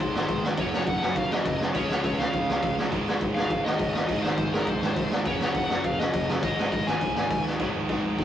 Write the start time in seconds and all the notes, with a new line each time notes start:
Already playing: G#2 D#3 G#3
0.00 C2 C5
0.14 G#1, snare
0.29 G#2, kick, crash
0.45 snare
0.57 F#1 F#2 C#3 F#3 C#5, kick, crash
0.74 snare
0.87 F#1 F#5, kick, crash
1.02 F#1 F#2 C#3 F#3, snare
1.16 F#1 F5, kick, crash
1.32 D#5, snare
1.46 F#1, kick, crash
1.62 snare
1.74 C#2 C#3 G#3 C#4 C#5, kick, crash
1.90 C#2, snare
2.04 C#2 C#5, kick, crash
2.18 C#2 C#3 G#3 C#4 F5, snare
2.33 F2, kick, crash
2.49 C#2, snare
2.63 A#1, kick, crash
2.79 snare
2.91 G#1 G#2 D#3 G#3, kick, crash
3.08 snare
3.21 G#1, kick, crash
3.35 G#1 G#2 D#3 G#3 F5, snare
3.50 G#1, kick, crash
3.65 D#5, snare
3.79 G#1, kick, crash
3.94 D#5, snare
4.08 G#1 G#2 D#3 G#3, kick, crash
4.23 G#1 C5, snare
4.38 G#1, kick, crash
4.52 G#1 G#2 D#3 G#3 A#4, snare
4.67 C2 C5, kick, crash
4.82 G#1, snare
4.96 G#2, kick, crash
5.11 snare
5.25 F#1 F#2 C#3 F#3 C#5, kick, crash
5.41 snare
5.54 F#1 F#5, kick, crash
5.69 F#1 F#2 C#3 F#3, snare
5.84 F#1 F5, kick, crash
5.99 D#5, snare
6.14 F#1, kick, crash
6.30 snare
6.43 G#1 G#2 D#3 G#3 D#5, kick, crash
6.58 G#1, snare
6.72 G#1 D#5, kick, crash
6.86 G#1 G#2 D#3 G#3 G#5, snare
7.01 C2, kick, crash
7.16 G#1, snare
7.31 G#2, kick, crash
7.46 snare
7.60 G#1 G#2 D#3 G#3, kick, snare
7.76 G#1
7.89 G#1 G#2 D#3 G#3, kick, snare
8.19 G#1 G#2 D#3 G#3, kick, snare